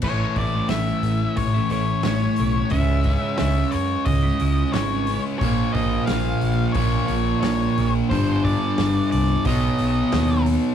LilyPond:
<<
  \new Staff \with { instrumentName = "Lead electric guitar" } { \time 4/4 \key a \dorian \tempo 4 = 89 cis''8 d''8 e''4 cis''8 cis''8 cis''4 | e''4 e''8 cis''8 dis''4 cis''8. r16 | cis''8 dis''8 eis''4 cis''8 cis''8 cis''8. r16 | c''8 d''4 d''8 dis''4. r8 | }
  \new Staff \with { instrumentName = "Clean electric guitar" } { \time 4/4 \key a \dorian <a, e a e'>8 <e a e'>16 <a cis' e'>16 <a, e a cis' e'>16 <a cis' e'>8. r16 <a cis' e'>16 <e a cis' e'>8 <a, e a cis' e'>16 <a cis' e'>16 <e a cis' e'>16 <a cis' e'>16 | <cis gis cis' e'>8 <cis gis cis' e'>16 <gis cis' e'>16 <cis gis cis' e'>16 <gis cis' e'>8. r16 <gis cis' e'>16 <cis gis cis' e'>8 <cis gis cis' e'>16 <gis cis' e'>16 <cis gis cis' e'>16 <gis cis' e'>16 | r1 | r1 | }
  \new Staff \with { instrumentName = "Distorted electric guitar" } { \clef bass \time 4/4 \key a \dorian <a, e a>1 | <cis gis cis'>1 | <ais, eis ais>1 | <g, d g>2 <b, fis b>2 | }
  \new Staff \with { instrumentName = "Overdriven electric guitar" } { \clef bass \time 4/4 \key a \dorian r1 | r1 | <ais, eis ais>2 <ais, eis ais>2 | <g, d g>2 <b, fis b>2 | }
  \new Staff \with { instrumentName = "Picked electric bass" } { \clef bass \time 4/4 \key a \dorian a,,8 a,,8 a,,8 a,,8 a,,8 a,,8 a,,8 b,,8 | cis,4 cis,8 fis,8 cis,8 cis,8 gis,,4 | ais,,8 ais,,8 ais,,8 ais,,8 ais,,8 ais,,8 ais,,8 ais,,8 | g,,4 g,,8 c,8 b,,8 b,,8 dis,4 | }
  \new DrumStaff \with { instrumentName = "Drums" } \drummode { \time 4/4 <cymc bd>8 <hho bd>8 <hho sn>8 hho8 <hho bd>8 hho8 <hho sn>8 hho8 | <hho bd>8 <hho bd>8 <hho sn>8 hho8 <hho bd>8 hho8 <hho sn>8 hho8 | <hho bd>8 <hho bd>8 <hho sn>8 hho8 <hho bd>8 hho8 <hho sn>8 hho8 | <hho bd>8 <hho bd>8 <hho sn>8 hho8 <hho bd>8 hho8 <hho sn>8 hho8 | }
>>